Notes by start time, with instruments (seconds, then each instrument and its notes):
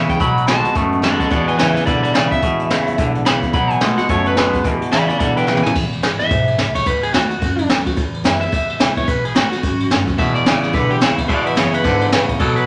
Already playing: clean electric guitar E2 C#3, steel-string acoustic guitar B2 E3 G#3 B3 E4
0.09 clean electric guitar G5, kick, closed hi-hat
0.20 upright bass B1, steel-string acoustic guitar B2, clean electric guitar B2 F#3 B5, kick, closed hi-hat
0.37 closed hi-hat
0.47 clean electric guitar B2 G#3 A5, steel-string acoustic guitar D#3 A3 B3 F#4, snare, closed hi-hat
0.64 steel-string acoustic guitar B3 F#4, snare, closed hi-hat
0.75 upright bass F#1, steel-string acoustic guitar F#2, clean electric guitar B2 A3, kick, closed hi-hat
0.92 closed hi-hat
1.02 clean electric guitar B2 G#3 A4 F#5, steel-string acoustic guitar D#3 A3 B3 F#4, snare, closed hi-hat
1.19 steel-string acoustic guitar B3 F#4, clean electric guitar A4 F#5, kick, closed hi-hat
1.30 steel-string acoustic guitar E2, upright bass E2, clean electric guitar E2 B2 D5 F#5, kick, closed hi-hat
1.47 clean electric guitar B4 G#5, closed hi-hat
1.58 clean electric guitar E2 C#3 B4 G#5, steel-string acoustic guitar E3 G#3 B3 E4, snare, closed hi-hat
1.75 steel-string acoustic guitar B3 E4, clean electric guitar B4 G#5, snare, closed hi-hat
1.86 upright bass B1, clean electric guitar E2 D3 D5 B5, steel-string acoustic guitar B2, kick, closed hi-hat
2.03 clean electric guitar D5 B5, closed hi-hat
2.14 clean electric guitar E2 C#3 D5 B5, steel-string acoustic guitar E3 G#3 B3 E4, snare, closed hi-hat
2.31 steel-string acoustic guitar B3 E4, clean electric guitar E5, kick, closed hi-hat
2.42 steel-string acoustic guitar E2, clean electric guitar E2 B2, upright bass E2, kick, closed hi-hat
2.59 closed hi-hat
2.70 clean electric guitar E2 C#3, steel-string acoustic guitar E3 G#3 B3 E4, snare, closed hi-hat
2.87 steel-string acoustic guitar B3 E4, closed hi-hat
2.98 upright bass B1, clean electric guitar E2 D3, steel-string acoustic guitar B2, kick, closed hi-hat
3.15 closed hi-hat
3.25 clean electric guitar E2 C#3 B5, steel-string acoustic guitar E3 G#3 B3 E4, snare, closed hi-hat
3.42 steel-string acoustic guitar B3 E4, kick, closed hi-hat
3.53 upright bass B1, steel-string acoustic guitar B2, clean electric guitar B2 F#3 B5, kick, closed hi-hat
3.70 clean electric guitar G#5, closed hi-hat
3.81 clean electric guitar B2 G#3 F#5, steel-string acoustic guitar D#3 A3 B3 F#4, snare, closed hi-hat
3.98 steel-string acoustic guitar B3 F#4, clean electric guitar F#5, snare, closed hi-hat
4.09 upright bass F#1, steel-string acoustic guitar F#2, clean electric guitar B2 A3 C#5, kick, closed hi-hat
4.26 clean electric guitar B4, closed hi-hat
4.36 clean electric guitar B2 G#3, steel-string acoustic guitar D#3 A3 B3 F#4, snare, closed hi-hat
4.53 steel-string acoustic guitar B3 F#4, kick, closed hi-hat
4.64 steel-string acoustic guitar E2, upright bass E2, clean electric guitar E2 B2, kick, closed hi-hat
4.81 closed hi-hat
4.92 clean electric guitar E2 C#3 D5 B5, steel-string acoustic guitar E3 G#3 B3 E4, snare, closed hi-hat
5.08 steel-string acoustic guitar B3 E4, clean electric guitar D5 B5, closed hi-hat
5.19 upright bass B1, clean electric guitar E2 D3 D5 B5, steel-string acoustic guitar B2, kick, closed hi-hat
5.37 clean electric guitar B4 G5, closed hi-hat
5.47 clean electric guitar E2 C#3 B4 G5, steel-string acoustic guitar E3 G#3 B3 E4, snare
5.57 mid tom
5.63 steel-string acoustic guitar B3 E4, clean electric guitar G#5, floor tom
5.75 upright bass E1, steel-string acoustic guitar E2, kick, crash
5.92 ride
6.03 upright bass G#1, steel-string acoustic guitar E3 G#3 B3 E4, snare, ride
6.19 steel-string acoustic guitar B3 E4, clean electric guitar E5, snare, ride
6.31 upright bass B1, steel-string acoustic guitar G#2, kick, ride
6.48 ride
6.58 upright bass C#2, steel-string acoustic guitar A2, snare, ride
6.75 clean electric guitar C#5, kick, ride
6.86 upright bass D#2, steel-string acoustic guitar B2, clean electric guitar B4, kick, ride
7.03 clean electric guitar G#4, ride
7.14 upright bass E2, steel-string acoustic guitar D#3 A3 B3 F#4, clean electric guitar F#4, snare, ride
7.30 steel-string acoustic guitar B3 F#4, ride
7.42 steel-string acoustic guitar F#2, upright bass F#2, kick, ride
7.59 ride
7.70 upright bass D#2, steel-string acoustic guitar D#3 A3 B3 F#4, snare, ride
7.86 steel-string acoustic guitar B3 F#4, kick, ride
7.97 steel-string acoustic guitar E2, upright bass E2, kick, ride
8.14 ride
8.24 upright bass F#2, steel-string acoustic guitar E3 G#3 B3 E4, snare, ride
8.41 steel-string acoustic guitar B3 E4, clean electric guitar E5, ride
8.52 upright bass E2, steel-string acoustic guitar B2, kick, ride
8.69 ride
8.79 upright bass C#2, steel-string acoustic guitar E3 G#3 B3 E4, snare, ride
8.96 steel-string acoustic guitar B3 E4, clean electric guitar C#5, kick, ride
9.08 upright bass B1, steel-string acoustic guitar B2, clean electric guitar B4, kick, ride
9.25 clean electric guitar G#4, ride
9.35 upright bass A1, steel-string acoustic guitar D#3 A3 B3 F#4, clean electric guitar F#4, snare, ride
9.52 steel-string acoustic guitar B3 F#4, snare, ride
9.63 upright bass G#1, steel-string acoustic guitar F#2, kick, ride
9.80 ride
9.90 upright bass F#1, steel-string acoustic guitar D#3 A3 B3 F#4, snare, ride
10.07 steel-string acoustic guitar B3 F#4, kick, ride
10.18 upright bass E1, clean electric guitar E2 B2 E5, steel-string acoustic guitar E2, kick, ride
10.35 clean electric guitar D5, ride
10.46 upright bass A1, clean electric guitar E2 C#3, steel-string acoustic guitar E3 G#3 B3 E4, snare, ride
10.62 steel-string acoustic guitar B3 E4, snare, ride
10.73 upright bass B1, clean electric guitar E2 D3 B4, steel-string acoustic guitar B2, kick, ride
10.90 clean electric guitar G4, ride
11.00 upright bass D#2, clean electric guitar E2 C#3 E4, steel-string acoustic guitar E3 G#3 B3 E4, snare, ride
11.17 steel-string acoustic guitar B3 E4, kick, ride
11.28 clean electric guitar E2 B2 D5 F#5, steel-string acoustic guitar E2, upright bass E2, kick, ride
11.46 clean electric guitar B4 E5, ride
11.56 clean electric guitar E2 C#3 G#4 C#5, upright bass F#2, steel-string acoustic guitar E3 G#3 B3 E4, snare, ride
11.74 clean electric guitar B4, ride
11.84 clean electric guitar E2 D3, steel-string acoustic guitar G#2, upright bass G#2, kick, ride
12.01 ride
12.12 clean electric guitar E2 C#3, steel-string acoustic guitar A2, upright bass C#3, snare, ride
12.29 kick, ride
12.40 steel-string acoustic guitar B2, upright bass B2, clean electric guitar B2 F#3 A4, kick, ride
12.56 clean electric guitar B4, ride